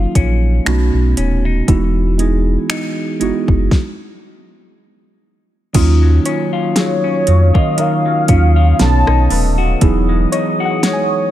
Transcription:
Already playing: D#3 F3 F#3 A#3 C#4 D#4 F4
0.15 A#1 C#4, kick, closed hi-hat
0.65 B1 B2 A3 B3 C#4 D#4 F#4, finger snap, closed hi-hat
0.94 B1
1.17 D#1 C#4, closed hi-hat
1.45 D#4
1.67 E1 E3 G#3 B3 D#4 E4 F#4, kick, closed hi-hat
2.18 G#3 B3 D#4 E4 G#4, closed hi-hat
2.70 D#4, finger snap, closed hi-hat
3.20 F#1 G#3 B3 D#4 E4 F#4, closed hi-hat
3.48 F#1, kick
3.71 kick, snare
5.73 D#2 D#3 F#3 A#3 C#4 D#4 F4 C#5 F5 D#6, kick, closed hi-hat, crash
6.02 F#3
6.25 C#4 C#5, closed hi-hat
6.53 F4
6.76 F#3 G#4 C#5, snare, closed hi-hat
7.04 C#4
7.27 F2 F#3, closed hi-hat
7.54 D#3 F4 D#5, kick
7.78 D#3 A#4 F5, closed hi-hat
8.06 F#3
8.28 D#2 F#3 A#3 C#4 D#4 F4, kick, closed hi-hat
8.56 F4
8.79 B1 B2 F#3 B3 C#4 D#4 A4 A5 D#6, snare, closed hi-hat
9.07 B1 D#4, cross-stick
9.30 D#1 A3 B4, open hi-hat
9.58 F#4
9.80 E1 E3 F#3 B3 D#4 E4 G#4 F#5, kick, closed hi-hat
10.09 G#3
10.32 D#4 C#5, closed hi-hat
10.60 F#4
10.65 F#5
10.83 G#3 C#5, snare, closed hi-hat
10.93 G#5

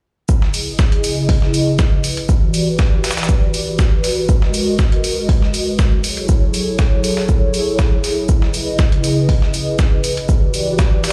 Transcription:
0.29 C#3 E4 G#4 B4 D#5, kick, shaker
0.42 snare
0.54 open hi-hat, shaker
0.79 kick, snare, shaker
0.92 closed hi-hat
1.04 open hi-hat, shaker
1.29 kick, open hi-hat
1.42 snare
1.54 open hi-hat, shaker
1.79 kick, snare, shaker
2.04 open hi-hat, shaker
2.17 closed hi-hat
2.29 E3 F#4 G4 D5, kick, shaker
2.54 open hi-hat, shaker
2.79 kick, snare, shaker
3.04 snare, open hi-hat, shaker
3.11 snare, shaker
3.17 snare, shaker
3.23 snare, shaker
3.29 kick, shaker
3.54 open hi-hat, shaker
3.79 kick, snare, shaker
4.04 snare, open hi-hat, shaker
4.29 G#3 A#4 D#5, kick, shaker
4.42 snare
4.54 open hi-hat, shaker
4.79 kick, snare, shaker
4.92 closed hi-hat
5.04 open hi-hat, shaker
5.29 kick, open hi-hat
5.42 snare
5.54 open hi-hat, shaker
5.79 kick, snare, shaker
6.04 F#3 E4 G#4 A4 C#5, open hi-hat, shaker
6.17 closed hi-hat
6.29 kick, shaker
6.54 open hi-hat, shaker
6.79 kick, snare, shaker
7.04 open hi-hat, shaker
7.17 snare
7.29 kick, shaker
7.54 open hi-hat, shaker
7.79 kick, snare, shaker
8.04 snare, open hi-hat, shaker
8.29 C#3 B4 D#5, kick, shaker
8.42 snare
8.54 open hi-hat, shaker
8.79 kick, snare, shaker
8.92 closed hi-hat
9.04 open hi-hat, shaker
9.29 kick, open hi-hat
9.42 snare
9.54 open hi-hat, shaker
9.79 kick, snare, shaker
10.04 open hi-hat, shaker
10.17 closed hi-hat
10.29 E3 F#4 G4 D5, kick, shaker
10.54 open hi-hat, shaker
10.79 kick, snare, shaker
11.04 snare, open hi-hat, shaker

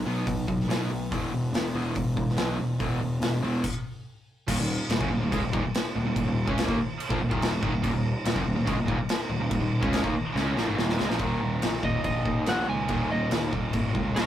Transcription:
0.06 B1 B2 F#3 B3
0.27 B1 B2 F#3, kick, open hi-hat
0.48 B1 B2 F#3, kick
0.60 snare
0.68 B1 B2 F#3 B3, snare, open hi-hat
0.90 B1 B2 F#3
1.12 E1 E2 B2 E3, kick, open hi-hat
1.32 E1 E2 B2
1.53 E1 E2 B2, snare, open hi-hat
1.75 E1 E2 B2 E3
1.95 E1 E2 B2, kick, open hi-hat
2.17 E1 E2 B2, kick
2.29 snare
2.37 B1 E2 B2 E3, snare, open hi-hat
2.58 E1 E2 B2
2.80 E1 E2 B2 E3, kick, open hi-hat
3.01 E1 E2 B2
3.21 E1 E2 B2, snare, open hi-hat
3.42 E1 E2 B2 E3
3.64 kick, crash
4.48 D#1 D#2 A#2, kick, crash
4.58 D#1 D#2 A#2
4.89 D#1 D#2 A#2, snare, crash
5.01 F#1 F#2 C#3, kick
5.11 D#1 D#2 A#2
5.21 D#1 D#2 A#2
5.32 C#2 C#3 G#3, kick, crash
5.42 D#1 D#2 A#2
5.53 D#1 D#2 A#2, kick
5.64 muted picked electric bass stroke, muted distorted electric guitar stroke, muted overdriven electric guitar stroke
5.74 snare, crash
5.96 D#1 D#2 A#2
6.05 D#1 D#2 A#2
6.16 D#1 D#2 A#2, kick, crash
6.26 D#1 D#2 A#2
6.47 C#2 C#3 G#3 C#4, kick
6.58 snare, crash
6.68 D#2 D#3 A#3, kick
6.78 muted picked electric bass stroke, muted distorted electric guitar stroke, muted overdriven electric guitar stroke
7.00 crash
7.10 A#1 A#2 F3, kick
7.20 D#1 D#2 A#2
7.31 D#1 D#2 A#2 D#3, kick
7.42 snare, crash
7.51 D#1 D#2 A#2
7.63 G#1 G#2 D#3, kick
7.72 D#1 D#2 A#2
7.82 D#1 D#2 A#2 D#4 A#4 D#5, kick, crash
7.94 D#1 D#2 A#2
8.25 D#1 D#2 A#2, snare, crash
8.35 F#1 F#2 C#3, kick
8.45 D#1 D#2 A#2
8.56 D#1 D#2 A#2
8.67 C#2 C#3 G#3, kick, crash
8.77 D#1 D#2 A#2
8.88 D#1 D#2 A#2, kick
8.98 muted distorted electric guitar stroke, muted picked electric bass stroke, muted overdriven electric guitar stroke
9.09 snare, crash
9.29 D#1 D#2 A#2
9.40 D#1 D#2 A#2
9.51 D#1 D#2 A#2, kick, crash
9.61 D#1 D#2 A#2
9.82 C#2 C#3 G#3 C#4, kick
9.93 snare, crash
10.03 D#2 D#3 A#3, kick
10.12 muted distorted electric guitar stroke, muted picked electric bass stroke, muted overdriven electric guitar stroke
10.35 C#2 C#3 G#3 C#4, snare
10.56 A#1 A#2 F3, snare
10.67 G#1 G#2 D#3
10.77 D#1 D#2 A#2 D#3, snare
10.89 snare
10.99 C#2 C#3 G#3, snare
11.09 A#1 A#2 F3, snare
11.19 D#1 D#2 A#2 D#3 D#4 A#4 D#5, kick, crash
11.41 D#1 D#2 A#2
11.62 A#1 D#2 A#2, snare, crash
11.82 D#1 D#2 A#2 D#5, kick
12.04 A#1 D#2 A#2 D#5, kick, crash
12.25 D#2 A#2, kick
12.46 A#1 D#2 A#2 D#3 F#5, snare, crash
12.68 C#2 D#2 A#2 G#5
12.88 D#1 D#2 A#2 D#3, kick, crash
13.10 D#1 D#2 A#2 D#5
13.31 D#2 A#2, snare, crash
13.52 D#1 D#2 A#2, kick
13.73 G#1 D#2 A#2, kick, crash
13.95 C#2 D#2 A#2, kick
14.16 D#1 D#2 A#2 D#3 A#4 C#5, snare, crash

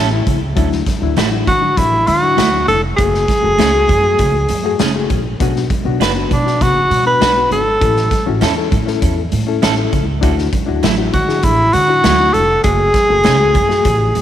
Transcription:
Already playing: A1
0.11 A3 C#4 E4
0.27 C#2, kick, closed hi-hat, high conga, low conga
0.56 D2 F#3 D4 E4, kick, closed hi-hat, muted conga
0.72 snare
0.86 kick, snare, closed hi-hat, high conga
1.01 D2 F#3 D4 E4
1.16 A1 A3 E4 F#4, snare, closed hi-hat
1.31 F#3 D4 E4, high conga
1.47 D3 F#4, kick, closed hi-hat, muted conga, high conga, low conga
1.61 F#3 D4 F#4
1.77 A1 E4, kick, closed hi-hat, muted conga
2.07 D3 F#4, closed hi-hat, muted conga, high conga
2.22 F#3 D4 E4
2.37 D2 A3 E4 F#4, snare, closed hi-hat, muted conga, high conga
2.52 F#3 D4 E4
2.68 F1 A4, closed hi-hat, muted conga, high conga, low conga
2.97 F#1 A3 F#4 G#4, kick, closed hi-hat, muted conga
3.14 snare
3.28 kick, snare, closed hi-hat, muted conga, high conga
3.43 F#1 A3 F#4 A4
3.58 C#2 A3 C#4 G#4, snare, closed hi-hat
3.72 A3 F#4 G#4, high conga
3.89 F#2, kick, closed hi-hat, high conga, low conga
4.03 A3 F#4 G#4
4.19 C#2, kick, closed hi-hat, muted conga
4.49 F#2, closed hi-hat, high conga
4.64 A3 F#4 G#4
4.79 F#1 A3 C#4 G#4, snare, closed hi-hat, high conga
4.95 A3 F#4 G#4
5.10 A#1, kick, closed hi-hat, high conga, low conga
5.40 B1 B3 D4 F#4, kick, closed hi-hat
5.56 snare
5.70 kick, closed hi-hat, muted conga, high conga
5.84 B1 B3 D4 F#4
6.00 F#1 D4 F#4 B4, snare, closed hi-hat
6.15 B3 D4 F#4, high conga
6.31 B2 D4, kick, closed hi-hat, muted conga, high conga, low conga
6.45 B3 D4 F#4, snare
6.61 F#1 F#4, kick, closed hi-hat
6.90 B2, closed hi-hat, high conga
7.05 B3 D4 F#4 B4
7.20 B1 D4 F#4 B4, snare, closed hi-hat, muted conga, high conga
7.35 B3 D4 F#4
7.51 G#1 A4, closed hi-hat, high conga, low conga
7.80 A1 C#4 E4 A4, kick, closed hi-hat, muted conga
7.96 snare
8.11 kick, snare, closed hi-hat, high conga
8.26 A1 C#4 E4 F#4
8.41 E2 C#4 E4 A4, snare, closed hi-hat
8.56 C#4 E4 A4, high conga
8.71 A2, kick, closed hi-hat, high conga, low conga
8.86 C#4 E4 A4, snare
9.02 E2, kick, closed hi-hat
9.32 A2, closed hi-hat, high conga
9.47 C#4 E4 A4
9.62 A1 C#4 E4 A4, snare, closed hi-hat, muted conga, high conga
9.76 C#4 E4 A4
9.93 C#2, kick, closed hi-hat, high conga, low conga
10.21 D2 D4 E4 F#4, kick, closed hi-hat
10.38 snare
10.53 kick, closed hi-hat, high conga
10.67 D2 D4 E4 F#4
10.83 A1 F#3 A3 E4, snare, closed hi-hat
10.97 D4 E4 F#4, high conga
11.13 D3 F#4, kick, closed hi-hat, muted conga, high conga, low conga
11.27 D4 E4 G#4, snare
11.43 A1 E4, kick, closed hi-hat, muted conga
11.73 D3 F#4, closed hi-hat, muted conga, high conga
11.88 D4 E4 F#4
12.03 D2 F#3 A3 E4, snare, closed hi-hat, high conga
12.17 D4 E4 F#4
12.34 F1 A4, closed hi-hat, high conga, low conga
12.63 F#1 A3 F#4 G#4, kick, closed hi-hat, muted conga
12.94 kick, snare, closed hi-hat, high conga
13.09 F#1 A3 F#4 A4
13.24 C#2 A3 C#4 G#4, snare, closed hi-hat
13.38 A3 F#4 G#4, high conga
13.54 F#2, kick, closed hi-hat, high conga, low conga
13.69 A3 F#4 G#4, snare
13.85 A1, kick, closed hi-hat, low conga
14.15 A2, closed hi-hat, muted conga, high conga

